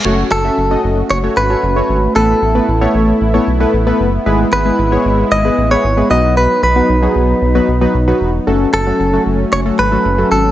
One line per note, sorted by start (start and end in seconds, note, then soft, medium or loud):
0.05 0.24 F#1 loud
0.05 0.27 A3 medium
0.05 4.22 A3 medium
0.05 0.27 C#4 medium
0.05 2.14 C#4 medium
0.05 2.14 F#4 medium
0.05 0.27 F#4 medium
0.05 0.27 A4 medium
0.05 0.27 C#5 loud
0.31 0.50 F#1 loud
0.31 0.81 A4 loud
0.45 0.59 A3 medium
0.45 0.59 C#4 medium
0.45 0.59 F#4 medium
0.45 0.59 A4 medium
0.45 0.59 E5 medium
0.58 0.76 F#1 loud
0.71 1.00 A3 medium
0.71 1.00 C#4 medium
0.71 1.00 F#4 medium
0.71 1.00 A4 medium
0.71 1.00 D#5 medium
0.84 1.03 F#1 loud
1.10 1.29 F#1 loud
1.10 1.18 C#5 loud
1.24 1.38 A3 medium
1.24 1.38 C#4 medium
1.24 1.38 F#4 medium
1.24 1.38 A4 medium
1.24 1.38 C#5 medium
1.37 1.55 G#1 medium
1.37 2.15 B4 loud
1.50 1.64 A3 medium
1.50 1.64 C#4 medium
1.50 1.64 F#4 medium
1.50 1.64 A4 medium
1.50 1.64 C#5 medium
1.63 1.82 F#1 loud
1.76 1.98 A3 medium
1.76 1.98 C#4 medium
1.76 1.98 F#4 medium
1.76 1.98 A4 medium
1.76 1.98 C#5 medium
1.89 2.08 G#1 loud
2.16 2.34 A1 loud
2.16 2.37 A3 medium
2.16 6.07 B3 medium
2.16 2.37 B3 medium
2.16 2.37 E4 medium
2.16 4.24 E4 medium
2.16 2.37 A4 medium
2.16 3.96 A4 medium
2.16 2.37 B4 medium
2.42 2.61 A1 loud
2.55 2.70 A3 medium
2.55 2.70 B3 medium
2.55 2.70 E4 medium
2.55 2.70 A4 medium
2.55 2.70 B4 medium
2.68 2.87 A1 loud
2.81 3.10 A3 medium
2.81 3.10 B3 medium
2.81 3.10 E4 medium
2.81 3.10 A4 medium
2.81 3.10 C#5 loud
2.95 3.13 A1 loud
3.21 3.39 A1 loud
3.34 3.49 A3 medium
3.34 3.49 B3 medium
3.34 3.49 E4 medium
3.34 3.49 A4 medium
3.34 3.49 C#5 loud
3.47 3.66 B1 loud
3.60 3.75 A3 loud
3.60 3.75 B3 medium
3.60 3.75 E4 medium
3.60 3.75 A4 medium
3.60 3.75 B4 loud
3.74 3.92 A1 loud
3.87 4.08 A3 loud
3.87 4.08 B3 medium
3.87 4.08 E4 medium
3.87 4.08 A4 medium
3.87 4.08 B4 loud
4.00 4.18 F#1 loud
4.26 4.45 G#1 loud
4.26 4.48 G#3 medium
4.26 6.09 G#3 medium
4.26 4.48 B3 medium
4.26 4.48 E4 medium
4.26 6.09 E4 medium
4.26 4.48 G#4 medium
4.26 4.48 B4 loud
4.53 4.71 G#1 loud
4.53 5.31 B4 loud
4.66 4.80 G#3 medium
4.66 4.80 B3 medium
4.66 4.80 E4 medium
4.66 4.80 G#4 medium
4.66 4.80 B4 medium
4.79 4.97 G#1 loud
4.92 5.21 G#3 medium
4.92 5.21 B3 medium
4.92 5.21 E4 medium
4.92 5.21 G#4 medium
4.92 5.21 C#5 medium
5.05 5.24 G#1 loud
5.32 5.50 G#1 loud
5.32 5.71 D#5 loud
5.45 5.59 G#3 medium
5.45 5.59 B3 medium
5.45 5.59 E4 medium
5.45 5.59 G#4 medium
5.45 5.59 B4 medium
5.58 5.76 A1 medium
5.71 5.85 G#3 medium
5.71 5.85 B3 medium
5.71 5.85 E4 medium
5.71 5.85 G#4 medium
5.71 5.85 B4 medium
5.71 6.10 C#5 loud
5.84 6.03 G#1 loud
5.97 6.10 G#3 medium
5.97 6.09 B3 medium
5.97 6.10 E4 medium
5.97 6.10 G#4 medium
5.97 6.09 B4 medium
6.10 6.47 B1 loud
6.10 6.63 F#3 medium
6.10 8.45 F#3 medium
6.10 6.63 B3 medium
6.10 8.45 B3 medium
6.10 6.63 D#4 medium
6.10 8.45 D#4 medium
6.10 6.63 F#4 medium
6.10 6.63 B4 medium
6.10 6.37 D#5 loud
6.37 6.62 B4 loud
6.63 6.82 B1 loud
6.63 8.17 B4 medium
6.76 6.91 F#3 medium
6.76 6.91 B3 medium
6.76 6.91 D#4 medium
6.76 6.91 F#4 medium
6.76 6.91 B4 medium
6.89 7.08 B1 loud
7.03 7.31 F#3 medium
7.03 7.31 B3 medium
7.03 7.31 D#4 medium
7.03 7.31 F#4 medium
7.03 7.31 G#4 medium
7.16 7.34 B1 medium
7.42 7.60 B1 loud
7.55 7.70 F#3 medium
7.55 7.70 B3 medium
7.55 7.70 D#4 medium
7.55 7.70 F#4 medium
7.55 7.70 B4 loud
7.68 7.87 B1 medium
7.81 7.96 F#3 medium
7.81 7.96 B3 medium
7.81 7.96 D#4 medium
7.81 7.96 F#4 medium
7.81 7.96 B4 loud
7.95 8.13 B1 loud
8.08 8.29 F#3 loud
8.08 8.29 B3 medium
8.08 8.29 D#4 medium
8.08 8.30 F#4 medium
8.08 8.30 B4 loud
8.21 8.39 E1 medium
8.47 8.66 F#1 loud
8.47 8.69 F#3 medium
8.47 10.52 F#3 medium
8.47 8.69 A3 medium
8.47 10.52 A3 medium
8.47 8.69 C#4 medium
8.47 10.52 C#4 medium
8.47 8.69 F#4 medium
8.47 8.69 A4 loud
8.74 8.92 F#1 loud
8.74 9.23 A4 loud
8.87 9.01 F#3 medium
8.87 9.01 A3 medium
8.87 9.01 C#4 medium
8.87 9.01 F#4 medium
8.87 9.01 A4 medium
9.00 9.18 F#1 loud
9.13 9.42 F#3 medium
9.13 9.42 A3 medium
9.13 9.42 C#4 medium
9.13 9.42 F#4 medium
9.13 9.42 A4 medium
9.26 9.45 F#1 loud
9.53 9.71 F#1 loud
9.53 9.60 C#5 loud
9.66 9.80 F#3 medium
9.66 9.80 A3 medium
9.66 9.80 C#4 medium
9.66 9.80 F#4 medium
9.66 9.80 A4 medium
9.79 9.97 G#1 medium
9.79 10.31 B4 loud
9.92 10.07 F#3 medium
9.92 10.07 A3 medium
9.92 10.07 C#4 medium
9.92 10.07 F#4 medium
9.92 10.06 A4 medium
10.05 10.24 F#1 loud
10.18 10.40 F#3 medium
10.18 10.40 A3 medium
10.18 10.40 C#4 medium
10.18 10.40 F#4 medium
10.18 10.40 A4 medium
10.31 10.50 G#1 loud
10.31 10.52 A4 medium